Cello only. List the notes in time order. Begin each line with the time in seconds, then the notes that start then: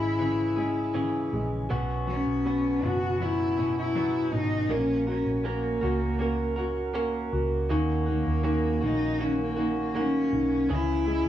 Already playing: E4
2.10 C#4
2.86 F#4
3.22 E4
3.78 E4
4.33 D#4
4.72 C#4
5.10 C#4
5.46 A#3
8.09 A#3
8.86 D#4
9.23 C#4
9.43 A#3
9.81 A#3
10.00 C#4
10.74 E4